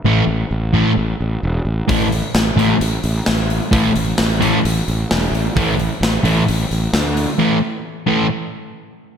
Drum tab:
HH |--------|oooooooo|oooooooo|oooooooo|
SD |--------|--o---o-|--o---o-|--o---o-|
BD |--------|o-------|o-------|o-------|

HH |--------|
SD |--------|
BD |--------|